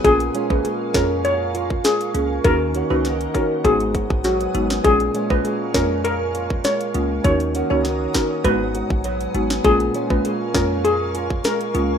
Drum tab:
HH |xxx-x-x-x-x-xxx-|x-x-xxx-xxx-xxx-|xxx-x-x-x-x-xxx-|xxx-x-x-x-x-xxx-|
SD |------o-----o---|----o------ro--o|------o-----o---|----o-o--------o|
BD |o--o--o----o----|o-----o-o-oo----|o--o--o----o----|o-----o-o--o----|

HH |xxx-x-x-x-x-xxx-|
SD |------o-----o---|
BD |o--o--o----o----|